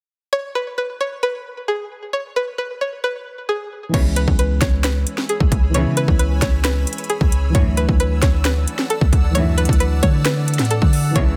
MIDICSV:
0, 0, Header, 1, 7, 480
1, 0, Start_track
1, 0, Tempo, 451128
1, 350, Time_signature, 4, 2, 24, 8
1, 12092, End_track
2, 0, Start_track
2, 0, Title_t, "Ambient pad"
2, 0, Program_c, 0, 92
2, 4190, Note_on_c, 0, 73, 81
2, 4190, Note_on_c, 0, 83, 72
2, 4191, Note_on_c, 0, 80, 77
2, 4191, Note_on_c, 0, 88, 91
2, 7992, Note_off_c, 0, 73, 0
2, 7992, Note_off_c, 0, 80, 0
2, 7992, Note_off_c, 0, 83, 0
2, 8030, Note_on_c, 0, 74, 79
2, 8030, Note_on_c, 0, 81, 74
2, 8031, Note_on_c, 0, 78, 71
2, 11832, Note_off_c, 0, 74, 0
2, 11832, Note_off_c, 0, 78, 0
2, 11832, Note_off_c, 0, 81, 0
2, 12092, Note_off_c, 0, 88, 0
2, 12092, End_track
3, 0, Start_track
3, 0, Title_t, "Synth pluck"
3, 0, Program_c, 1, 84
3, 348, Note_on_c, 1, 73, 95
3, 571, Note_off_c, 1, 73, 0
3, 588, Note_on_c, 1, 71, 84
3, 812, Note_off_c, 1, 71, 0
3, 828, Note_on_c, 1, 71, 80
3, 1052, Note_off_c, 1, 71, 0
3, 1070, Note_on_c, 1, 73, 82
3, 1292, Note_off_c, 1, 73, 0
3, 1308, Note_on_c, 1, 71, 87
3, 1760, Note_off_c, 1, 71, 0
3, 1789, Note_on_c, 1, 68, 80
3, 2241, Note_off_c, 1, 68, 0
3, 2269, Note_on_c, 1, 73, 81
3, 2492, Note_off_c, 1, 73, 0
3, 2513, Note_on_c, 1, 71, 85
3, 2734, Note_off_c, 1, 71, 0
3, 2749, Note_on_c, 1, 71, 84
3, 2972, Note_off_c, 1, 71, 0
3, 2992, Note_on_c, 1, 73, 77
3, 3214, Note_off_c, 1, 73, 0
3, 3232, Note_on_c, 1, 71, 88
3, 3683, Note_off_c, 1, 71, 0
3, 3711, Note_on_c, 1, 68, 76
3, 4162, Note_off_c, 1, 68, 0
3, 4191, Note_on_c, 1, 73, 95
3, 4413, Note_off_c, 1, 73, 0
3, 4430, Note_on_c, 1, 71, 86
3, 4653, Note_off_c, 1, 71, 0
3, 4671, Note_on_c, 1, 71, 79
3, 4893, Note_off_c, 1, 71, 0
3, 4910, Note_on_c, 1, 73, 78
3, 5133, Note_off_c, 1, 73, 0
3, 5151, Note_on_c, 1, 71, 90
3, 5602, Note_off_c, 1, 71, 0
3, 5632, Note_on_c, 1, 68, 73
3, 6083, Note_off_c, 1, 68, 0
3, 6113, Note_on_c, 1, 73, 86
3, 6334, Note_off_c, 1, 73, 0
3, 6352, Note_on_c, 1, 71, 85
3, 6574, Note_off_c, 1, 71, 0
3, 6589, Note_on_c, 1, 71, 82
3, 6812, Note_off_c, 1, 71, 0
3, 6832, Note_on_c, 1, 73, 85
3, 7054, Note_off_c, 1, 73, 0
3, 7070, Note_on_c, 1, 71, 92
3, 7522, Note_off_c, 1, 71, 0
3, 7551, Note_on_c, 1, 68, 80
3, 8002, Note_off_c, 1, 68, 0
3, 8032, Note_on_c, 1, 73, 95
3, 8254, Note_off_c, 1, 73, 0
3, 8271, Note_on_c, 1, 71, 80
3, 8493, Note_off_c, 1, 71, 0
3, 8513, Note_on_c, 1, 71, 84
3, 8734, Note_off_c, 1, 71, 0
3, 8752, Note_on_c, 1, 73, 81
3, 8974, Note_off_c, 1, 73, 0
3, 8992, Note_on_c, 1, 71, 89
3, 9442, Note_off_c, 1, 71, 0
3, 9471, Note_on_c, 1, 69, 79
3, 9922, Note_off_c, 1, 69, 0
3, 9946, Note_on_c, 1, 73, 93
3, 10171, Note_off_c, 1, 73, 0
3, 10188, Note_on_c, 1, 71, 83
3, 10412, Note_off_c, 1, 71, 0
3, 10429, Note_on_c, 1, 71, 84
3, 10652, Note_off_c, 1, 71, 0
3, 10668, Note_on_c, 1, 73, 83
3, 10891, Note_off_c, 1, 73, 0
3, 10910, Note_on_c, 1, 71, 86
3, 11361, Note_off_c, 1, 71, 0
3, 11392, Note_on_c, 1, 69, 80
3, 11842, Note_off_c, 1, 69, 0
3, 11869, Note_on_c, 1, 73, 96
3, 12092, Note_off_c, 1, 73, 0
3, 12092, End_track
4, 0, Start_track
4, 0, Title_t, "Felt piano"
4, 0, Program_c, 2, 0
4, 4139, Note_on_c, 2, 52, 70
4, 4164, Note_on_c, 2, 56, 62
4, 4191, Note_on_c, 2, 59, 62
4, 4217, Note_on_c, 2, 61, 66
4, 4243, Note_on_c, 2, 64, 74
4, 4380, Control_c, 2, 64, 127
4, 6046, Note_off_c, 2, 52, 0
4, 6059, Note_off_c, 2, 56, 0
4, 6062, Note_on_c, 2, 52, 70
4, 6072, Note_off_c, 2, 59, 0
4, 6086, Note_off_c, 2, 61, 0
4, 6089, Note_on_c, 2, 56, 62
4, 6099, Note_off_c, 2, 64, 0
4, 6115, Note_on_c, 2, 59, 62
4, 6141, Note_on_c, 2, 61, 61
4, 6167, Note_on_c, 2, 64, 80
4, 7960, Note_off_c, 2, 52, 0
4, 7976, Note_on_c, 2, 52, 67
4, 7981, Note_off_c, 2, 56, 0
4, 7994, Note_off_c, 2, 59, 0
4, 8003, Note_on_c, 2, 54, 65
4, 8008, Note_off_c, 2, 61, 0
4, 8021, Note_off_c, 2, 64, 0
4, 8029, Note_on_c, 2, 57, 63
4, 8046, Control_c, 2, 64, 0
4, 8055, Note_on_c, 2, 62, 66
4, 8081, Note_on_c, 2, 64, 77
4, 8252, Control_c, 2, 64, 127
4, 9882, Note_off_c, 2, 52, 0
4, 9898, Note_off_c, 2, 54, 0
4, 9898, Note_on_c, 2, 52, 64
4, 9911, Note_off_c, 2, 57, 0
4, 9925, Note_off_c, 2, 62, 0
4, 9925, Note_on_c, 2, 54, 61
4, 9938, Note_off_c, 2, 64, 0
4, 9951, Note_on_c, 2, 57, 61
4, 9978, Note_on_c, 2, 62, 62
4, 10003, Note_on_c, 2, 64, 77
4, 11802, Note_off_c, 2, 52, 0
4, 11818, Note_on_c, 2, 52, 70
4, 11819, Note_off_c, 2, 54, 0
4, 11833, Note_off_c, 2, 57, 0
4, 11845, Note_on_c, 2, 56, 62
4, 11846, Note_off_c, 2, 62, 0
4, 11859, Note_off_c, 2, 64, 0
4, 11871, Note_on_c, 2, 59, 63
4, 11884, Control_c, 2, 64, 0
4, 11897, Note_on_c, 2, 61, 67
4, 11923, Note_on_c, 2, 64, 75
4, 12073, Control_c, 2, 64, 127
4, 12092, Note_off_c, 2, 52, 0
4, 12092, Note_off_c, 2, 56, 0
4, 12092, Note_off_c, 2, 59, 0
4, 12092, Note_off_c, 2, 61, 0
4, 12092, Note_off_c, 2, 64, 0
4, 12092, End_track
5, 0, Start_track
5, 0, Title_t, "String section"
5, 0, Program_c, 3, 48
5, 4189, Note_on_c, 3, 47, 93
5, 4189, Note_on_c, 3, 49, 96
5, 4189, Note_on_c, 3, 52, 102
5, 4394, Note_off_c, 3, 47, 0
5, 4394, Note_off_c, 3, 49, 0
5, 4394, Note_off_c, 3, 52, 0
5, 6110, Note_on_c, 3, 47, 93
5, 6110, Note_on_c, 3, 49, 99
5, 6110, Note_on_c, 3, 52, 114
5, 6314, Note_off_c, 3, 47, 0
5, 6314, Note_off_c, 3, 49, 0
5, 6314, Note_off_c, 3, 52, 0
5, 8032, Note_on_c, 3, 45, 91
5, 8032, Note_on_c, 3, 52, 104
5, 8033, Note_on_c, 3, 42, 95
5, 8236, Note_off_c, 3, 42, 0
5, 8236, Note_off_c, 3, 45, 0
5, 8236, Note_off_c, 3, 52, 0
5, 9951, Note_on_c, 3, 42, 95
5, 9951, Note_on_c, 3, 45, 101
5, 9951, Note_on_c, 3, 52, 105
5, 10155, Note_off_c, 3, 42, 0
5, 10155, Note_off_c, 3, 45, 0
5, 10155, Note_off_c, 3, 52, 0
5, 11871, Note_on_c, 3, 47, 92
5, 11871, Note_on_c, 3, 49, 101
5, 11871, Note_on_c, 3, 52, 105
5, 12075, Note_off_c, 3, 47, 0
5, 12075, Note_off_c, 3, 49, 0
5, 12075, Note_off_c, 3, 52, 0
5, 12092, End_track
6, 0, Start_track
6, 0, Title_t, "808-style bass"
6, 0, Program_c, 4, 38
6, 4190, Note_on_c, 4, 37, 112
6, 4536, Note_off_c, 4, 37, 0
6, 4550, Note_on_c, 4, 37, 103
6, 4896, Note_off_c, 4, 37, 0
6, 4910, Note_on_c, 4, 37, 109
6, 5371, Note_off_c, 4, 37, 0
6, 5751, Note_on_c, 4, 37, 105
6, 5866, Note_off_c, 4, 37, 0
6, 5870, Note_on_c, 4, 37, 107
6, 6231, Note_on_c, 4, 49, 98
6, 6247, Note_off_c, 4, 37, 0
6, 6459, Note_off_c, 4, 49, 0
6, 6471, Note_on_c, 4, 37, 98
6, 6816, Note_off_c, 4, 37, 0
6, 6831, Note_on_c, 4, 37, 107
6, 7292, Note_off_c, 4, 37, 0
6, 7670, Note_on_c, 4, 37, 104
6, 8016, Note_off_c, 4, 37, 0
6, 8031, Note_on_c, 4, 38, 114
6, 8376, Note_off_c, 4, 38, 0
6, 8391, Note_on_c, 4, 38, 98
6, 8737, Note_off_c, 4, 38, 0
6, 8751, Note_on_c, 4, 38, 104
6, 9212, Note_off_c, 4, 38, 0
6, 9590, Note_on_c, 4, 38, 102
6, 9706, Note_off_c, 4, 38, 0
6, 9710, Note_on_c, 4, 38, 106
6, 10286, Note_off_c, 4, 38, 0
6, 10310, Note_on_c, 4, 38, 104
6, 10656, Note_off_c, 4, 38, 0
6, 10670, Note_on_c, 4, 50, 111
6, 11271, Note_on_c, 4, 45, 103
6, 11287, Note_off_c, 4, 50, 0
6, 11499, Note_off_c, 4, 45, 0
6, 11511, Note_on_c, 4, 50, 101
6, 11856, Note_off_c, 4, 50, 0
6, 11871, Note_on_c, 4, 37, 114
6, 12092, Note_off_c, 4, 37, 0
6, 12092, End_track
7, 0, Start_track
7, 0, Title_t, "Drums"
7, 4190, Note_on_c, 9, 36, 120
7, 4190, Note_on_c, 9, 42, 79
7, 4190, Note_on_c, 9, 49, 101
7, 4296, Note_off_c, 9, 36, 0
7, 4297, Note_off_c, 9, 42, 0
7, 4297, Note_off_c, 9, 49, 0
7, 4430, Note_on_c, 9, 42, 88
7, 4536, Note_off_c, 9, 42, 0
7, 4550, Note_on_c, 9, 36, 90
7, 4657, Note_off_c, 9, 36, 0
7, 4670, Note_on_c, 9, 42, 73
7, 4777, Note_off_c, 9, 42, 0
7, 4910, Note_on_c, 9, 36, 91
7, 4910, Note_on_c, 9, 42, 90
7, 4911, Note_on_c, 9, 38, 92
7, 4923, Note_on_c, 9, 26, 74
7, 5017, Note_off_c, 9, 36, 0
7, 5017, Note_off_c, 9, 38, 0
7, 5017, Note_off_c, 9, 42, 0
7, 5029, Note_off_c, 9, 26, 0
7, 5150, Note_on_c, 9, 42, 71
7, 5151, Note_on_c, 9, 38, 122
7, 5163, Note_on_c, 9, 26, 98
7, 5257, Note_off_c, 9, 38, 0
7, 5257, Note_off_c, 9, 42, 0
7, 5269, Note_off_c, 9, 26, 0
7, 5391, Note_on_c, 9, 42, 83
7, 5497, Note_off_c, 9, 42, 0
7, 5510, Note_on_c, 9, 38, 73
7, 5617, Note_off_c, 9, 38, 0
7, 5631, Note_on_c, 9, 42, 72
7, 5737, Note_off_c, 9, 42, 0
7, 5750, Note_on_c, 9, 36, 98
7, 5857, Note_off_c, 9, 36, 0
7, 5870, Note_on_c, 9, 36, 102
7, 5871, Note_on_c, 9, 42, 76
7, 5976, Note_off_c, 9, 36, 0
7, 5978, Note_off_c, 9, 42, 0
7, 6111, Note_on_c, 9, 42, 77
7, 6218, Note_off_c, 9, 42, 0
7, 6351, Note_on_c, 9, 42, 83
7, 6458, Note_off_c, 9, 42, 0
7, 6471, Note_on_c, 9, 36, 92
7, 6577, Note_off_c, 9, 36, 0
7, 6590, Note_on_c, 9, 42, 80
7, 6697, Note_off_c, 9, 42, 0
7, 6831, Note_on_c, 9, 36, 93
7, 6831, Note_on_c, 9, 38, 91
7, 6831, Note_on_c, 9, 42, 88
7, 6843, Note_on_c, 9, 26, 74
7, 6937, Note_off_c, 9, 36, 0
7, 6937, Note_off_c, 9, 42, 0
7, 6938, Note_off_c, 9, 38, 0
7, 6950, Note_off_c, 9, 26, 0
7, 7070, Note_on_c, 9, 42, 78
7, 7071, Note_on_c, 9, 38, 122
7, 7083, Note_on_c, 9, 26, 99
7, 7177, Note_off_c, 9, 38, 0
7, 7177, Note_off_c, 9, 42, 0
7, 7189, Note_off_c, 9, 26, 0
7, 7311, Note_on_c, 9, 42, 77
7, 7371, Note_off_c, 9, 42, 0
7, 7371, Note_on_c, 9, 42, 65
7, 7430, Note_off_c, 9, 42, 0
7, 7430, Note_on_c, 9, 42, 55
7, 7491, Note_off_c, 9, 42, 0
7, 7491, Note_on_c, 9, 42, 46
7, 7550, Note_off_c, 9, 42, 0
7, 7550, Note_on_c, 9, 42, 74
7, 7657, Note_off_c, 9, 42, 0
7, 7670, Note_on_c, 9, 36, 103
7, 7777, Note_off_c, 9, 36, 0
7, 7791, Note_on_c, 9, 42, 77
7, 7897, Note_off_c, 9, 42, 0
7, 8031, Note_on_c, 9, 36, 118
7, 8031, Note_on_c, 9, 42, 81
7, 8137, Note_off_c, 9, 36, 0
7, 8137, Note_off_c, 9, 42, 0
7, 8271, Note_on_c, 9, 42, 88
7, 8377, Note_off_c, 9, 42, 0
7, 8391, Note_on_c, 9, 36, 91
7, 8498, Note_off_c, 9, 36, 0
7, 8511, Note_on_c, 9, 42, 74
7, 8617, Note_off_c, 9, 42, 0
7, 8751, Note_on_c, 9, 36, 92
7, 8751, Note_on_c, 9, 38, 90
7, 8751, Note_on_c, 9, 42, 89
7, 8763, Note_on_c, 9, 26, 73
7, 8857, Note_off_c, 9, 36, 0
7, 8857, Note_off_c, 9, 38, 0
7, 8857, Note_off_c, 9, 42, 0
7, 8870, Note_off_c, 9, 26, 0
7, 8990, Note_on_c, 9, 42, 71
7, 8991, Note_on_c, 9, 38, 123
7, 9003, Note_on_c, 9, 26, 99
7, 9097, Note_off_c, 9, 38, 0
7, 9097, Note_off_c, 9, 42, 0
7, 9109, Note_off_c, 9, 26, 0
7, 9231, Note_on_c, 9, 42, 83
7, 9337, Note_off_c, 9, 42, 0
7, 9350, Note_on_c, 9, 38, 71
7, 9456, Note_off_c, 9, 38, 0
7, 9471, Note_on_c, 9, 42, 74
7, 9577, Note_off_c, 9, 42, 0
7, 9590, Note_on_c, 9, 36, 98
7, 9697, Note_off_c, 9, 36, 0
7, 9710, Note_on_c, 9, 36, 101
7, 9711, Note_on_c, 9, 42, 77
7, 9816, Note_off_c, 9, 36, 0
7, 9818, Note_off_c, 9, 42, 0
7, 9951, Note_on_c, 9, 42, 76
7, 10057, Note_off_c, 9, 42, 0
7, 10191, Note_on_c, 9, 42, 70
7, 10271, Note_off_c, 9, 42, 0
7, 10271, Note_on_c, 9, 42, 70
7, 10311, Note_on_c, 9, 36, 93
7, 10351, Note_off_c, 9, 42, 0
7, 10351, Note_on_c, 9, 42, 73
7, 10417, Note_off_c, 9, 36, 0
7, 10431, Note_off_c, 9, 42, 0
7, 10431, Note_on_c, 9, 42, 79
7, 10537, Note_off_c, 9, 42, 0
7, 10670, Note_on_c, 9, 36, 95
7, 10670, Note_on_c, 9, 42, 88
7, 10777, Note_off_c, 9, 36, 0
7, 10777, Note_off_c, 9, 42, 0
7, 10910, Note_on_c, 9, 42, 78
7, 10911, Note_on_c, 9, 38, 126
7, 10923, Note_on_c, 9, 26, 94
7, 11017, Note_off_c, 9, 38, 0
7, 11017, Note_off_c, 9, 42, 0
7, 11029, Note_off_c, 9, 26, 0
7, 11150, Note_on_c, 9, 42, 77
7, 11210, Note_off_c, 9, 42, 0
7, 11210, Note_on_c, 9, 42, 68
7, 11269, Note_on_c, 9, 38, 74
7, 11270, Note_off_c, 9, 42, 0
7, 11270, Note_on_c, 9, 42, 55
7, 11331, Note_off_c, 9, 42, 0
7, 11331, Note_on_c, 9, 42, 45
7, 11376, Note_off_c, 9, 38, 0
7, 11391, Note_off_c, 9, 42, 0
7, 11391, Note_on_c, 9, 42, 73
7, 11497, Note_off_c, 9, 42, 0
7, 11510, Note_on_c, 9, 36, 101
7, 11617, Note_off_c, 9, 36, 0
7, 11630, Note_on_c, 9, 46, 86
7, 11737, Note_off_c, 9, 46, 0
7, 11870, Note_on_c, 9, 36, 121
7, 11870, Note_on_c, 9, 42, 81
7, 11977, Note_off_c, 9, 36, 0
7, 11977, Note_off_c, 9, 42, 0
7, 12092, End_track
0, 0, End_of_file